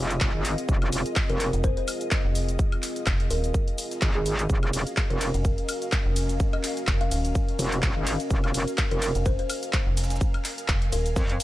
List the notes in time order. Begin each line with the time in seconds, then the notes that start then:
Already playing: F1 C4 F4 G#4 A#4 D#5 F5 G#5
0.10 snare, closed hi-hat, shaker
0.20 kick, snare, clap, shaker
0.34 G#1
0.45 open hi-hat, shaker
0.58 closed hi-hat, shaker
0.69 F1, kick, shaker
0.82 closed hi-hat, high woodblock
0.92 F1, snare, open hi-hat, shaker
1.06 closed hi-hat, shaker
1.16 kick, snare, clap, high woodblock, shaker
1.29 F1 A#4, closed hi-hat
1.40 A#4, snare, open hi-hat, shaker
1.53 F1, closed hi-hat, shaker
1.64 C5, kick, shaker
1.77 C5, closed hi-hat
1.88 open hi-hat, high woodblock, shaker
2.01 closed hi-hat, shaker
2.11 kick, snare, clap, shaker
2.25 F1
2.35 open hi-hat, shaker
2.48 closed hi-hat, shaker
2.59 kick, shaker
2.72 closed hi-hat, high woodblock
2.82 clap, open hi-hat, shaker
2.96 closed hi-hat, shaker
3.06 F1, kick, snare, clap, high woodblock, shaker
3.20 closed hi-hat
3.31 D#1 A#4, open hi-hat, shaker
3.44 closed hi-hat, shaker
3.54 kick, shaker
3.68 closed hi-hat
3.78 open hi-hat, shaker
3.91 snare, closed hi-hat, shaker
4.01 G#1, kick, snare, clap, shaker
4.15 G#4
4.26 G#4, open hi-hat, shaker
4.39 closed hi-hat, shaker
4.50 F1 C#4 F#4 A#4, kick, shaker
4.62 A#4, closed hi-hat, high woodblock
4.73 F1 G#5, snare, open hi-hat, ride, shaker
4.87 closed hi-hat, shaker
4.97 kick, snare, clap, high woodblock, shaker
5.10 F1 A#4, closed hi-hat
5.21 A#4, snare, open hi-hat, ride, shaker
5.34 F1, closed hi-hat, shaker
5.45 kick, shaker
5.58 closed hi-hat
5.69 open hi-hat, ride, high woodblock, shaker
5.82 closed hi-hat, shaker
5.92 kick, snare, clap, shaker
6.06 F1
6.16 open hi-hat, ride, shaker
6.29 closed hi-hat, shaker
6.40 kick, shaker
6.53 D#5, closed hi-hat, high woodblock
6.63 D#5, clap, open hi-hat, ride, shaker
6.77 closed hi-hat, shaker
6.87 F1, kick, snare, clap, high woodblock, shaker
7.01 F5, closed hi-hat
7.11 D#1 F5, open hi-hat, ride, shaker
7.25 closed hi-hat, shaker
7.35 kick, shaker
7.49 closed hi-hat
7.59 F1, open hi-hat, ride, shaker
7.72 snare, closed hi-hat, shaker
7.82 kick, snare, clap, shaker
7.96 G#1
8.07 open hi-hat, ride, shaker
8.20 closed hi-hat, shaker
8.31 F1, kick, shaker
8.44 closed hi-hat, high woodblock
8.54 F1, snare, open hi-hat, ride, shaker
8.68 closed hi-hat, shaker
8.78 kick, snare, clap, high woodblock, shaker
8.91 F1 A#4, closed hi-hat
9.02 A#4, snare, open hi-hat, ride, shaker
9.15 F1, closed hi-hat, shaker
9.26 C5, kick, shaker
9.39 C5, closed hi-hat
9.50 open hi-hat, ride, high woodblock, shaker
9.63 closed hi-hat, shaker
9.73 kick, snare, clap, shaker
9.87 F1
9.97 snare, open hi-hat, ride, shaker
10.04 snare, shaker
10.10 snare, closed hi-hat, shaker
10.16 snare, shaker
10.21 kick, shaker
10.34 closed hi-hat, high woodblock
10.44 clap, open hi-hat, ride, shaker
10.58 closed hi-hat, shaker
10.68 F1, kick, snare, clap, high woodblock, shaker
10.82 closed hi-hat
10.92 D#1 A#4, open hi-hat, ride, shaker
11.06 closed hi-hat, shaker
11.16 F2, kick, snare, shaker
11.29 closed hi-hat
11.40 snare, open hi-hat, ride, shaker